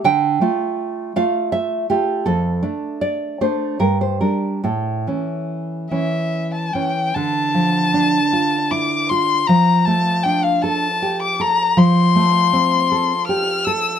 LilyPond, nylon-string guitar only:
\new Staff \with { instrumentName = "Nylon-string guitar" } { \time 3/4 \key d \minor \tempo 4 = 78 << { g''4. f''8 e''8 g'8 | a'4 d''8 c''8 bes'16 c''16 bes'8 | a'2 r4 | r2. |
r2. | r2. | } \\ { d8 <a f'>4 <a f'>4 <a f'>8 | f,8 <a d'>4 <a d'>8 g,8 <g d'>8 | a,8 <e cis'>4 <e cis'>4 <e cis'>8 | d8 f8 d'8 f'8 e'8 f'8 |
f8 a8 d'8 a'8 g'8 a'8 | f8 a8 c'8 a'8 g'8 a'8 | } >> }